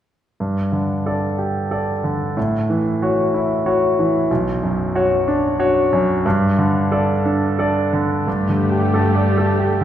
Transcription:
0.40 grand piano G2
0.72 grand piano D3
1.06 grand piano A4 D5
1.38 grand piano G4
1.71 grand piano A4 D5
2.04 grand piano D3
2.37 grand piano A2
2.70 grand piano E3
3.02 grand piano F#4 C#5
3.34 grand piano E4
3.66 grand piano F#4 C#5
3.99 grand piano E3
4.31 grand piano B1
4.63 grand piano F#2
4.95 grand piano F#4 C#5
5.28 grand piano D4
5.59 grand piano F#4 C#5
5.93 grand piano F#2
6.26 grand piano G2
6.58 grand piano D3
6.92 grand piano A4 D5
7.25 grand piano D4
7.59 grand piano A4 D5
7.93 grand piano D3
8.26 cello section G2, grand piano G2, viola section A3 G4
8.49 grand piano D3
8.71 grand piano G4
8.94 grand piano A4
9.16 grand piano D5
9.38 grand piano A4
9.59 grand piano G4
9.81 grand piano D3

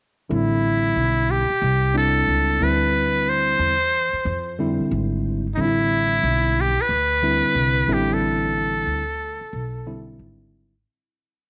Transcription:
0.29 upright bass A1, tine electric piano D3 G3 C4 E4
0.34 muted trumpet E4
0.96 upright bass B1
1.31 muted trumpet G4
1.50 muted upright bass stroke
1.62 upright bass C2
1.94 tine electric piano G3 C4 D4 E4, muted trumpet A4
2.28 upright bass C#2
2.60 upright bass D2, tine electric piano D3 G3 C4 E4, muted trumpet B4
3.29 muted trumpet C5
3.59 upright bass E2
4.13 muted upright bass stroke
4.25 upright bass F2
4.59 tine electric piano D3 G3 C4 E4
4.80 muted upright bass stroke
4.91 upright bass G#1
5.54 upright bass A1, tine electric piano D3 G3 C4, muted trumpet D#4
5.59 tine electric piano D4, muted trumpet E4
5.65 tine electric piano E4
6.23 upright bass B1
6.61 muted trumpet G4
6.77 muted upright bass stroke
6.81 muted trumpet B4
6.89 upright bass D2
7.22 tine electric piano D3 G3 C4 E4
7.43 muted upright bass stroke
7.55 upright bass C2
7.88 upright bass A1, tine electric piano D3 G3 C4 E4
7.93 muted trumpet G4
8.14 muted trumpet A4
8.87 upright bass D2
9.41 muted upright bass stroke
9.53 upright bass B1
9.86 tine electric piano D3 G3 C4 E4
10.19 upright bass G#1

